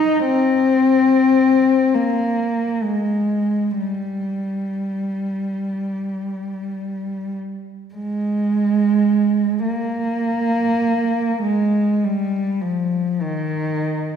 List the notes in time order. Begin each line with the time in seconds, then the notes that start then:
Already playing: D#4
0.24 C4
1.94 A#3
2.84 G#3
3.80 G3
7.95 G#3
9.66 A#3
11.42 G#3
12.05 G3
12.61 F3
13.21 D#3